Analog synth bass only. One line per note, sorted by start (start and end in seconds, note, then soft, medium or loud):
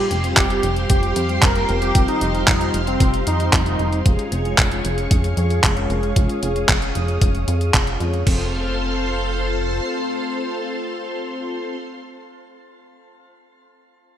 0.11 0.34 F1 loud
0.37 0.61 F1 medium
0.64 0.87 F1 medium
0.90 1.13 F1 loud
1.16 1.40 F2 medium
1.42 1.66 F1 loud
1.69 1.92 F1 medium
1.95 2.07 F1 loud
2.22 2.45 F1 loud
2.48 2.71 F1 medium
2.74 2.98 F1 medium
3.00 3.24 F1 loud
3.27 3.50 F2 medium
3.53 3.76 F1 loud
3.79 4.03 F1 medium
4.06 4.17 F1 medium
4.32 4.55 F1 loud
4.58 4.82 F1 medium
4.85 5.08 F1 medium
5.11 5.34 F1 medium
5.37 5.61 F2 medium
5.64 5.87 F1 loud
5.90 6.13 F1 medium
6.16 6.28 F1 medium
6.43 6.66 F1 medium
6.69 6.92 F1 medium
6.95 7.19 F1 medium
7.22 7.45 F1 medium
7.48 7.71 F2 medium
7.74 7.98 F1 medium
8.00 8.24 F2 medium
8.27 9.81 F1 medium